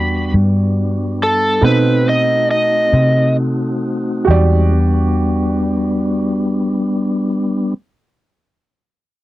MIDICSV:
0, 0, Header, 1, 5, 480
1, 0, Start_track
1, 0, Key_signature, 1, "minor"
1, 0, Tempo, 847458
1, 919, Tempo, 875912
1, 1879, Tempo, 911854
1, 2355, Time_signature, 12, 3, 24, 8
1, 4965, End_track
2, 0, Start_track
2, 0, Title_t, "Electric slide guitar"
2, 0, Program_c, 0, 29
2, 0, Note_on_c, 0, 83, 105
2, 188, Note_off_c, 0, 83, 0
2, 698, Note_on_c, 0, 69, 116
2, 923, Note_off_c, 0, 69, 0
2, 935, Note_on_c, 0, 71, 95
2, 1157, Note_off_c, 0, 71, 0
2, 1176, Note_on_c, 0, 75, 94
2, 1398, Note_off_c, 0, 75, 0
2, 1406, Note_on_c, 0, 75, 102
2, 1870, Note_off_c, 0, 75, 0
2, 4965, End_track
3, 0, Start_track
3, 0, Title_t, "Upright piano"
3, 0, Program_c, 1, 0
3, 0, Note_on_c, 1, 66, 54
3, 0, Note_on_c, 1, 67, 49
3, 0, Note_on_c, 1, 74, 61
3, 890, Note_off_c, 1, 66, 0
3, 893, Note_off_c, 1, 67, 0
3, 899, Note_off_c, 1, 74, 0
3, 913, Note_on_c, 1, 63, 50
3, 919, Note_on_c, 1, 69, 47
3, 929, Note_on_c, 1, 60, 55
3, 2331, Note_off_c, 1, 63, 0
3, 2334, Note_off_c, 1, 69, 0
3, 2338, Note_off_c, 1, 60, 0
3, 2338, Note_on_c, 1, 66, 61
3, 2351, Note_on_c, 1, 67, 60
3, 2369, Note_on_c, 1, 74, 72
3, 3917, Note_off_c, 1, 66, 0
3, 3930, Note_off_c, 1, 67, 0
3, 3948, Note_off_c, 1, 74, 0
3, 4965, End_track
4, 0, Start_track
4, 0, Title_t, "Tonewheel organ"
4, 0, Program_c, 2, 16
4, 0, Note_on_c, 2, 55, 72
4, 0, Note_on_c, 2, 59, 68
4, 0, Note_on_c, 2, 62, 71
4, 910, Note_off_c, 2, 59, 0
4, 910, Note_off_c, 2, 62, 0
4, 911, Note_off_c, 2, 55, 0
4, 923, Note_on_c, 2, 63, 67
4, 924, Note_on_c, 2, 66, 67
4, 926, Note_on_c, 2, 57, 66
4, 926, Note_on_c, 2, 60, 65
4, 2343, Note_off_c, 2, 63, 0
4, 2343, Note_off_c, 2, 66, 0
4, 2344, Note_off_c, 2, 57, 0
4, 2344, Note_off_c, 2, 60, 0
4, 2352, Note_on_c, 2, 55, 59
4, 2353, Note_on_c, 2, 60, 66
4, 2355, Note_on_c, 2, 56, 62
4, 2355, Note_on_c, 2, 63, 60
4, 2588, Note_off_c, 2, 55, 0
4, 2592, Note_on_c, 2, 62, 65
4, 2594, Note_off_c, 2, 60, 0
4, 2594, Note_on_c, 2, 55, 69
4, 2594, Note_on_c, 2, 59, 68
4, 2595, Note_off_c, 2, 56, 0
4, 2596, Note_off_c, 2, 63, 0
4, 4176, Note_off_c, 2, 62, 0
4, 4178, Note_off_c, 2, 55, 0
4, 4178, Note_off_c, 2, 59, 0
4, 4965, End_track
5, 0, Start_track
5, 0, Title_t, "Fingered electric bass"
5, 0, Program_c, 3, 33
5, 0, Note_on_c, 3, 40, 84
5, 176, Note_off_c, 3, 40, 0
5, 193, Note_on_c, 3, 43, 88
5, 895, Note_off_c, 3, 43, 0
5, 921, Note_on_c, 3, 47, 87
5, 1615, Note_off_c, 3, 47, 0
5, 1638, Note_on_c, 3, 48, 99
5, 2335, Note_off_c, 3, 48, 0
5, 2357, Note_on_c, 3, 40, 96
5, 3936, Note_off_c, 3, 40, 0
5, 4965, End_track
0, 0, End_of_file